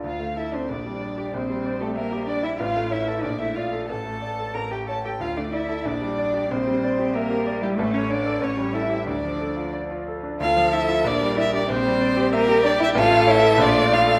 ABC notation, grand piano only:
X:1
M:2/4
L:1/16
Q:1/4=93
K:Dm
V:1 name="Grand piano"
D,, A, A D B,,, G, d G | B,,, G, d G e G d E | A,,, A, ^c A B,,, A, d A | A,,, A, d A A,,, A, ^c A |
D,, A, d A B,,, G, d G | B,,, G, d G e G d E | A,,, A, ^c A A,,, G, A G | D,, F, A F d F A D |
D,, F, A F B,,, G, d G | B,,, G, d G e G d E | A,,, A, ^c A B,,, A, d A |]